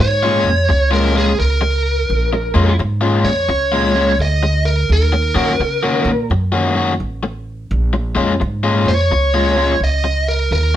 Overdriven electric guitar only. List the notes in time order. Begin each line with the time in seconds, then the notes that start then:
0.00 muted overdriven electric guitar stroke
0.23 A#2 G#3 C#4 F4
0.69 muted overdriven electric guitar stroke
0.91 A#2 G#3 C#4 F4
1.14 A#2 G#3 C#4 F4
1.61 muted overdriven electric guitar stroke
2.33 muted overdriven electric guitar stroke
2.54 A#2 G#3 C#4 F4
2.79 muted overdriven electric guitar stroke
3.01 A#2 G#3 C#4 F4
3.49 muted overdriven electric guitar stroke
3.72 A#2 G#3 C#4 F4
3.95 A#2 G#3 C#4 F4
4.43 muted overdriven electric guitar stroke
5.13 muted overdriven electric guitar stroke
5.35 D#3 A#3 C#4 F#4
5.61 muted overdriven electric guitar stroke
5.83 D#3 A#3 C#4 F#4
6.31 muted overdriven electric guitar stroke
6.52 D#3 A#3 C#4 F#4
6.74 D#3 A#3 C#4 F#4
7.23 muted overdriven electric guitar stroke
7.93 muted overdriven electric guitar stroke
8.15 A#2 G#3 C#4 F4
8.40 muted overdriven electric guitar stroke
8.64 A#2 G#3 C#4 F4
9.12 muted overdriven electric guitar stroke
9.34 A#2 G#3 C#4 F4
9.56 A#2 G#3 C#4 F4
10.04 muted overdriven electric guitar stroke